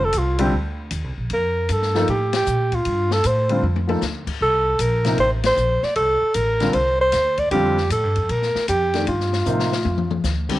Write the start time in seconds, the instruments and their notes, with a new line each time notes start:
Already playing: upright bass F1
0.04 alto saxophone A4
0.12 upright bass C2, hi-hat pedal, ride
0.18 alto saxophone F4
0.38 grand piano D3 G3 C4 G4, ride
0.52 upright bass D2
0.91 upright bass D#2, hi-hat pedal, ride
1.04 upright bass C2
1.18 upright bass A#1
1.30 upright bass F2, alto saxophone A#4, ride
1.69 upright bass G2, alto saxophone A4, hi-hat pedal, ride
1.82 snare
1.95 grand piano F3 A#3 D#4 A4, snare
2.08 upright bass A2, alto saxophone G4, ride
2.33 alto saxophone G4, snare, ride
2.46 upright bass A#2, hi-hat pedal
2.72 alto saxophone F4, kick, ride
2.85 upright bass G2, ride
3.11 alto saxophone A4, snare
3.24 upright bass A2, alto saxophone C5, hi-hat pedal, ride
3.49 grand piano D3 G3 C4 F4, ride
3.62 upright bass F2, high tom
3.76 high tom
3.87 grand piano F3 A#3 D#4 A4, high tom
4.01 upright bass D2, snare, hi-hat pedal
4.27 muted upright bass stroke, kick, crash
4.41 upright bass C2, alto saxophone A4
4.79 upright bass A#1, alto saxophone A#4, hi-hat pedal, ride
5.04 grand piano C3 F3 A#3 D#4, snare, ride
5.18 upright bass A1, alto saxophone C5, ride
5.43 alto saxophone C5, snare, ride
5.57 upright bass A#1, hi-hat pedal
5.83 alto saxophone D5, muted upright bass stroke, snare
5.96 upright bass C2, alto saxophone A4, ride
6.22 muted upright bass stroke
6.34 upright bass A1, alto saxophone A#4, hi-hat pedal, ride
6.60 grand piano D3 G3 C4 F4, snare, ride
6.73 upright bass C2, alto saxophone C5, ride
7.01 alto saxophone C5
7.12 upright bass D2, snare, hi-hat pedal, ride
7.38 alto saxophone D5, kick, ride
7.51 upright bass F2, grand piano D3 G3 C4 F4, alto saxophone G4, ride
7.77 snare
7.90 upright bass A2, alto saxophone A4, hi-hat pedal, ride
8.04 upright bass G2
8.15 upright bass F2, ride
8.29 upright bass A#2, alto saxophone A#4, ride
8.42 snare
8.55 muted upright bass stroke, snare
8.68 upright bass F2, alto saxophone G4, hi-hat pedal, ride
8.94 grand piano D#3 A3 D4 G4, snare, ride
9.07 upright bass G2, alto saxophone F4, ride
9.20 snare
9.33 snare
9.46 upright bass A2, grand piano C3 F3 A#3 D#4, hi-hat pedal
9.59 snare
9.72 snare
9.85 upright bass F2, high tom
9.98 mid tom
10.11 mid tom
10.23 upright bass D2, snare, hi-hat pedal
10.49 grand piano D3 G3 C4 G4, kick, crash